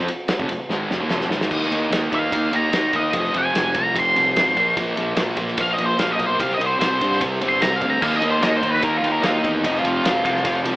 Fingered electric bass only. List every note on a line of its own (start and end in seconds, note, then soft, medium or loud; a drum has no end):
0.08 muted fingered electric bass stroke soft
0.39 0.49 F1 loud
0.50 0.58 F1 medium
0.59 muted fingered electric bass stroke soft
0.69 0.88 G#1 medium
0.89 0.99 F1 medium
1.00 1.09 D#2 medium
1.09 1.29 F1 medium
1.29 1.49 G#1 medium
1.51 1.70 D#2 medium
1.70 1.90 D#2 medium
1.91 2.11 D#2 medium
2.12 2.32 D#2 medium
2.32 2.51 D#2 medium
2.52 2.72 D#2 medium
2.73 2.93 D#2 medium
2.94 3.13 D#2 medium
3.14 3.33 F1 medium
3.33 3.54 F1 medium
3.54 3.74 F1 medium
3.75 3.95 C2 medium
3.96 4.15 F1 medium
4.16 4.34 C2 medium
4.35 4.55 G#1 medium
4.57 4.76 A#1 medium
4.77 4.96 A#1 medium
4.97 5.16 A#1 medium
5.17 5.36 A#1 medium
5.37 5.57 A#1 medium
5.58 5.78 A#1 medium
5.79 5.98 A#1 medium
5.98 6.18 A#1 medium
6.19 6.39 B1 medium
6.40 6.58 C2 medium
6.59 6.79 C2 medium
6.79 6.99 C2 medium
7.01 7.20 G2 medium
7.21 7.40 C2 medium
7.40 7.60 G1 medium
7.60 7.80 C2 medium
7.82 8.01 D2 medium
8.02 8.20 D#2 medium
8.21 8.40 D#2 medium
8.41 8.61 D#2 medium
8.63 8.83 D#2 medium
8.83 9.02 D#2 medium
9.02 9.22 D#2 medium
9.22 9.43 D#2 medium
9.44 9.63 E2 medium
9.64 9.83 F1 medium
9.84 10.03 F1 medium
10.04 10.24 F1 medium
10.25 10.44 C2 medium
10.45 10.64 F1 loud
10.65 10.76 C2 medium